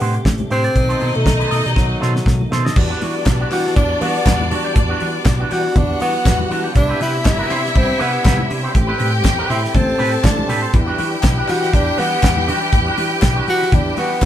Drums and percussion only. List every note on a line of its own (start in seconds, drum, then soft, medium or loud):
0.00 open hi-hat medium
0.14 closed hi-hat soft
0.25 kick loud
0.25 snare loud
0.25 high conga medium
0.38 closed hi-hat soft
0.38 high conga medium
0.50 open hi-hat medium
0.64 closed hi-hat medium
0.76 kick loud
0.76 closed hi-hat medium
0.76 muted conga soft
0.90 closed hi-hat soft
1.00 open hi-hat medium
1.00 muted conga soft
1.15 closed hi-hat soft
1.26 kick loud
1.26 snare loud
1.26 high conga medium
1.41 closed hi-hat soft
1.51 open hi-hat medium
1.66 snare soft
1.66 closed hi-hat soft
1.76 kick loud
1.76 snare medium
2.02 snare medium
2.16 snare medium
2.26 kick loud
2.26 snare medium
2.26 high conga medium
2.41 high conga medium
2.52 snare medium
2.67 snare medium
2.76 kick loud
2.76 crash loud
2.76 muted conga medium
3.01 open hi-hat medium
3.01 muted conga medium
3.26 kick loud
3.26 snare loud
3.26 clap loud
3.26 closed hi-hat medium
3.26 high conga medium
3.51 clap medium
3.51 open hi-hat medium
3.67 snare soft
3.76 kick loud
3.76 closed hi-hat medium
4.01 open hi-hat medium
4.01 muted conga soft
4.26 kick loud
4.26 snare loud
4.26 clap loud
4.26 closed hi-hat medium
4.26 high conga medium
4.41 high conga medium
4.51 open hi-hat medium
4.76 kick loud
4.76 closed hi-hat medium
4.76 muted conga medium
5.00 open hi-hat medium
5.00 muted conga medium
5.25 kick loud
5.25 snare loud
5.25 clap loud
5.25 closed hi-hat medium
5.25 high conga medium
5.51 open hi-hat medium
5.76 kick loud
5.76 closed hi-hat medium
5.76 low conga medium
6.00 open hi-hat medium
6.00 muted conga soft
6.25 kick loud
6.25 snare loud
6.25 clap loud
6.25 closed hi-hat medium
6.25 high conga medium
6.39 high conga medium
6.51 open hi-hat medium
6.75 kick loud
6.75 closed hi-hat medium
6.75 muted conga medium
7.01 open hi-hat medium
7.01 muted conga medium
7.25 kick loud
7.25 snare loud
7.25 clap loud
7.25 closed hi-hat medium
7.25 high conga medium
7.51 clap medium
7.51 open hi-hat medium
7.66 snare soft
7.76 kick loud
7.76 closed hi-hat medium
8.00 open hi-hat medium
8.25 kick loud
8.25 snare loud
8.25 clap loud
8.25 closed hi-hat medium
8.25 high conga medium
8.39 high conga medium
8.50 open hi-hat medium
8.75 kick loud
8.75 closed hi-hat medium
8.75 muted conga medium
8.99 open hi-hat medium
8.99 muted conga soft
9.24 kick loud
9.24 snare loud
9.24 clap loud
9.24 closed hi-hat medium
9.24 high conga medium
9.50 open hi-hat medium
9.65 snare soft
9.74 kick loud
9.74 closed hi-hat medium
9.74 low conga medium
9.99 open hi-hat medium
9.99 muted conga soft
10.24 kick loud
10.24 snare loud
10.24 clap loud
10.24 closed hi-hat medium
10.24 high conga medium
10.38 high conga medium
10.49 open hi-hat medium
10.49 high conga medium
10.74 kick loud
10.74 closed hi-hat medium
10.74 muted conga medium
10.98 open hi-hat medium
10.98 muted conga soft
11.23 kick loud
11.23 snare loud
11.23 clap loud
11.23 closed hi-hat medium
11.23 high conga medium
11.48 clap medium
11.48 open hi-hat medium
11.63 snare soft
11.73 kick loud
11.73 closed hi-hat medium
11.98 open hi-hat medium
11.98 muted conga soft
12.23 kick loud
12.23 snare loud
12.23 clap loud
12.23 closed hi-hat medium
12.23 high conga medium
12.37 high conga medium
12.48 open hi-hat medium
12.73 kick loud
12.73 closed hi-hat medium
12.73 muted conga medium
12.97 open hi-hat medium
12.97 muted conga soft
13.22 kick loud
13.22 snare loud
13.22 clap loud
13.22 closed hi-hat medium
13.22 high conga medium
13.48 open hi-hat medium
13.62 snare soft
13.72 kick loud
13.72 closed hi-hat medium
13.72 low conga medium
13.97 open hi-hat medium
13.97 muted conga soft
14.22 kick loud
14.22 clap loud
14.22 closed hi-hat medium